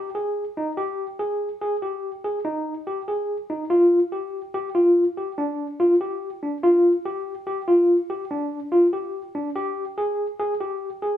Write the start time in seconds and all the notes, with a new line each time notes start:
0.15 G#4
0.57 D#4
0.77 G4
1.19 G#4
1.62 G#4
1.82 G4
2.24 G#4
2.45 D#4
2.87 G4
3.08 G#4
3.50 D#4
3.70 F4
4.12 G4
4.54 G4
4.75 F4
5.17 G4
5.38 D4
5.80 F4
6.01 G4
6.43 D4
6.63 F4
7.05 G4
7.47 G4
7.68 F4
8.10 G4
8.31 D4
8.72 F4
8.93 G4
9.35 D4
9.56 G4
9.98 G#4
10.39 G#4
10.61 G4
11.02 G#4